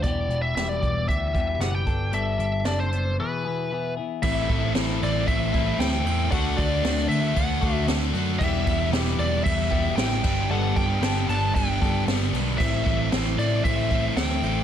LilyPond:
<<
  \new Staff \with { instrumentName = "Lead electric guitar" } { \time 4/4 \key a \dorian \tempo 4 = 115 d''8. e''16 e''16 d''8. e''4 fis''16 g''8. | e''4 d''16 c''8. b'4. r8 | e''4 r8 d''8 e''4 g''4 | fis''8 d''4 e''8 fis''4 r4 |
e''4 r8 d''8 e''4 g''4 | fis''8 g''4 a''8 g''4 r4 | e''4 r8 d''8 e''4 g''4 | }
  \new Staff \with { instrumentName = "Distorted electric guitar" } { \time 4/4 \key a \dorian r1 | r1 | <a, e a c' e' a'>8 <a c' e' a'>8 <a c' e' a'>4. <a c' e' a'>8 <a, e a c' e' a'>8 <a c' e' a'>8 | <d a d' fis' a'>8 <d' fis' a'>8 <a d' fis' a'>4. <d' fis' a'>8 <d a d' fis' a'>8 <d' fis' a'>8 |
<e g b e'>8 <g b e'>8 <e g b e'>4. <g b e'>8 <e g b e'>8 <g, d g b d'>8 | <g, d g b d'>8 <g b d'>8 <d g b d'>4. <g b d'>8 <g, d g b d'>8 <g b d'>8 | <a, e a c' e'>8 <a c' e'>8 <e a c' e'>4. <a c' e'>8 <a, e a c' e'>8 <a c' e'>8 | }
  \new Staff \with { instrumentName = "Clean electric guitar" } { \time 4/4 \key a \dorian <e, b, e g b g'>8 <e g b g'>8 <e, b, e g b g'>8 <e g b g'>8 <e g b g'>8 <e, b, e g b g'>8 <e g b g'>8 <g b d' a'>8 | <g b d' a'>8 <b d' a'>8 <g d' a'>8 <b d' a'>8 <e, b, e b e' gis'>8 <e, b, e b e' gis'>8 <e b e' gis'>8 <e b e' gis'>8 | <e c' e'>8 r8 <e c' e'>8 r4 <e c' e'>8 r4 | <d a d' fis'>8 r8 <d a d' fis'>8 r4 <d a d' fis'>8 r4 |
<e g b g'>8 r8 <e g b g'>8 r4 <e g b g'>8 r4 | <g b d' a'>8 r8 <g b d' a'>8 r4 <g b d' a'>8 r4 | r1 | }
  \new Staff \with { instrumentName = "Overdriven electric guitar" } { \time 4/4 \key a \dorian r1 | r1 | <a, e a c' e'>4 <a, e a c' e'>8 <a c' e'>8 <e a c' e'>8 <a c' e'>4 <a c' e'>8 | <d a d' fis'>4 <d a d' fis'>8 <a d' fis'>8 <d a d' fis'>8 <a d' fis'>4 <a d' fis'>8 |
<e g b e'>4 <e g b e'>8 <g b e'>8 <e g b e'>8 <g b e'>4 <g, d g b d'>8 | <g, d g b d'>4 <g, d g b d'>8 <g b d'>8 <d g b d'>8 <g b d'>4 <g b d'>8 | <a, e a c' e'>4 <a, e a c' e'>8 <a c' e'>8 <e a c' e'>8 <a c' e'>4 <a c' e'>8 | }
  \new Staff \with { instrumentName = "Picked electric bass" } { \clef bass \time 4/4 \key a \dorian e,,8 e,,8 e,,8 e,,8 d,8 e,,8 fis,,8 g,,8 | g,,8 g,,8 fis,,4 r2 | a,,8 a,,8 a,,8 a,,8 a,,4 d,8 e,8 | d,8 d,8 d,8 d,8 d,8 d,8 d,8 fis,8 |
e,,8 e,,8 e,,8 e,,8 e,,4 a,,8 g,,8 | g,,8 g,,8 g,,8 g,,8 g,,8 g,,8 g,,8 b,,8 | a,,8 a,,8 a,,8 a,,8 a,,4 d,8 a,,8 | }
  \new DrumStaff \with { instrumentName = "Drums" } \drummode { \time 4/4 <hh bd>8 hh8 <hh sn>8 <hh bd>8 <hh bd>8 <hh bd>8 <hh sn>8 <hh bd>8 | hh8 hh8 <hh sn>8 hh8 r4 r4 | <cymc bd>8 <bd cymr>8 <cymr sn>8 cymr8 <bd cymr>8 <bd cymr>8 <cymr sn>8 cymr8 | <bd cymr>8 <bd cymr>8 <cymr sn>8 cymr8 <bd cymr>8 <bd cymr>8 <cymr sn>8 cymr8 |
<cymc bd>8 <bd cymr>8 <cymr sn>8 cymr8 <bd cymr>8 <bd cymr>8 <cymr sn>8 <cymc bd>8 | r8 <bd cymr>8 <cymr sn>8 cymr8 <bd cymr>8 <bd cymr>8 <cymr sn>8 cymr8 | <cymc bd>8 <bd cymr>8 <cymr sn>8 cymr8 <bd cymr>8 <bd cymr>8 <cymr sn>8 cymr8 | }
>>